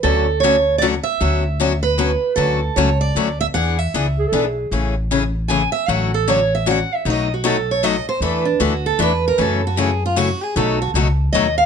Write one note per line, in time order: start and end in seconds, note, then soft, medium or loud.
0.03 0.98 D2 medium
0.03 0.26 D3 medium
0.03 0.26 F#3 medium
0.03 0.26 A3 medium
0.03 0.26 C#4 medium
0.03 0.26 F#4 medium
0.03 0.40 A4 medium
0.40 0.55 D3 medium
0.40 0.55 F#3 medium
0.40 0.55 A3 medium
0.40 0.78 C#5 medium
0.44 0.55 C#4 medium
0.44 0.55 F#4 medium
0.78 0.93 D3 medium
0.78 0.94 F#3 medium
0.78 0.94 A3 medium
0.78 0.86 D5 medium
0.82 0.94 C#4 medium
0.82 0.94 F#4 medium
1.03 1.79 E5 loud
1.20 2.14 D2 medium
1.20 1.42 D3 medium
1.20 1.43 F#3 medium
1.20 1.43 B3 medium
1.20 1.43 C#4 medium
1.20 1.43 F#4 medium
1.60 1.71 D3 medium
1.60 1.72 F#3 medium
1.60 1.72 B3 medium
1.60 1.72 C#4 medium
1.60 1.72 F#4 medium
1.83 2.33 B4 medium
1.98 2.10 D3 medium
1.98 2.10 F#3 medium
1.98 2.10 B3 medium
1.98 2.10 C#4 medium
1.98 2.10 F#4 medium
2.36 2.68 D2 medium
2.36 2.59 D3 medium
2.36 2.59 F#3 medium
2.36 2.59 A3 medium
2.36 2.59 C#4 medium
2.36 2.59 F#4 medium
2.36 2.77 A4 medium
2.76 3.10 C#2 medium
2.76 2.88 D3 medium
2.76 2.88 F#3 medium
2.76 2.89 A3 medium
2.76 2.89 C#4 medium
2.76 2.89 F#4 loud
2.76 3.00 C#5 medium
3.01 3.38 D5 medium
3.15 3.49 D2 medium
3.15 3.27 D3 medium
3.15 3.28 F#3 medium
3.15 3.28 A3 medium
3.15 3.28 C#4 medium
3.15 3.28 F#4 medium
3.41 3.46 E5 loud
3.54 3.86 E2 medium
3.54 3.76 E3 medium
3.54 3.76 B3 medium
3.54 3.76 D4 medium
3.54 3.77 G#4 medium
3.54 3.79 F#5 loud
3.79 4.57 E5 medium
3.94 4.27 C#2 medium
3.94 4.05 E3 medium
3.94 4.06 B3 medium
3.94 4.06 D4 medium
3.94 4.06 G#4 medium
4.19 4.28 G#4 medium
4.28 4.46 A4 medium
4.32 4.66 B1 medium
4.32 4.44 E3 medium
4.32 4.44 B3 medium
4.32 4.44 D4 medium
4.32 4.44 G#4 medium
4.45 4.71 G#4 medium
4.71 5.65 A1 medium
4.71 4.93 C#3 medium
4.71 4.94 E3 medium
4.71 4.94 A3 medium
4.71 4.94 C#4 medium
4.71 4.94 G#4 medium
5.11 5.22 C#3 medium
5.11 5.22 E3 medium
5.11 5.23 A3 medium
5.11 5.23 C#4 loud
5.11 5.23 G#4 medium
5.48 5.61 C#3 medium
5.48 5.61 E3 medium
5.48 5.61 A3 medium
5.48 5.61 C#4 medium
5.48 5.62 G#4 medium
5.48 5.72 G#5 medium
5.72 5.89 E5 medium
5.88 6.82 A1 medium
5.88 6.10 D3 medium
5.88 6.10 F#3 medium
5.88 6.11 A3 medium
5.88 6.10 C#4 medium
5.88 6.11 F#4 medium
5.88 6.13 F#5 medium
6.14 6.28 A4 medium
6.28 6.39 D3 medium
6.28 6.39 F#3 medium
6.28 6.39 A3 medium
6.28 6.39 C#4 medium
6.28 6.39 F#4 loud
6.28 6.53 C#5 medium
6.55 6.67 E5 medium
6.66 6.78 D3 medium
6.66 6.78 F#3 medium
6.66 6.78 A3 medium
6.66 6.78 C#4 medium
6.66 6.78 F#4 medium
6.71 6.95 F#5 medium
6.95 7.07 E5 medium
7.05 7.99 B1 medium
7.05 7.27 B2 medium
7.05 7.27 F#3 medium
7.05 7.27 A3 medium
7.05 7.27 D#4 medium
7.05 7.28 F#4 medium
7.10 7.32 D#5 medium
7.34 7.46 F#4 soft
7.44 7.56 B2 medium
7.44 7.56 F#3 loud
7.44 7.56 A3 medium
7.44 7.56 D#4 loud
7.44 7.56 F#4 loud
7.44 7.69 A4 medium
7.71 7.84 C#5 medium
7.83 7.95 B2 medium
7.83 7.95 F#3 medium
7.83 7.95 A3 medium
7.83 7.95 D#4 medium
7.83 7.95 F#4 medium
7.83 8.08 D#5 medium
8.09 8.22 C5 medium
8.21 8.52 E2 medium
8.21 8.44 E3 medium
8.21 8.44 A3 medium
8.21 8.44 D4 medium
8.21 8.44 E4 medium
8.21 8.44 A4 medium
8.21 8.46 B4 medium
8.45 8.60 D4 medium
8.60 8.94 D2 medium
8.60 8.72 E3 medium
8.60 8.72 A3 medium
8.60 8.72 D4 medium
8.60 8.72 E4 medium
8.60 8.85 F#4 medium
8.60 8.73 A4 medium
8.86 9.00 A4 medium
8.99 9.33 E2 medium
8.99 9.11 E3 medium
8.99 9.11 A3 medium
8.99 9.11 D4 medium
8.99 9.11 E4 medium
8.99 9.11 A4 medium
8.99 9.25 B4 medium
9.28 9.40 A#4 medium
9.38 10.32 F#2 medium
9.38 9.60 C#3 medium
9.38 9.60 E3 medium
9.38 9.60 A3 medium
9.38 9.61 C#4 medium
9.38 9.61 F#4 medium
9.38 9.64 A4 medium
9.67 9.79 F#4 medium
9.77 9.89 C#3 medium
9.77 9.90 E3 medium
9.77 9.90 A3 medium
9.77 9.90 C#4 medium
9.77 9.90 F#4 medium
9.77 10.02 G#4 medium
10.06 10.18 F4 medium
10.16 10.28 C#3 medium
10.16 10.28 E3 medium
10.16 10.28 A3 medium
10.16 10.29 C#4 medium
10.16 10.29 F#4 loud
10.16 10.43 F#4 medium
10.43 10.56 G#4 medium
10.56 10.87 B1 medium
10.56 10.78 B2 medium
10.56 10.78 F#3 medium
10.56 10.78 A3 medium
10.56 10.78 D#4 medium
10.56 10.78 F#4 medium
10.56 10.81 A4 medium
10.82 10.90 F#4 medium
10.94 11.27 C#2 medium
10.94 11.06 B2 medium
10.94 11.07 F#3 medium
10.94 11.07 A3 medium
10.94 11.07 D#4 medium
10.94 11.07 F#4 medium
11.33 11.66 D#2 medium
11.33 11.45 B2 medium
11.33 11.46 F#3 medium
11.33 11.46 A3 loud
11.33 11.46 D#4 loud
11.33 11.46 F#4 medium
11.33 11.57 D#5 medium
11.58 11.66 F5 medium